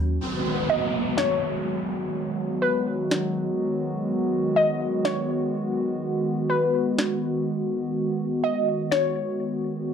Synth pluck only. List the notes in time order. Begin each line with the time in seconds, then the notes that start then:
Already playing: A#4
0.70 D#5
1.17 C#5
2.62 B4
4.56 D#5
5.05 C#5
6.50 B4
8.44 D#5
8.91 C#5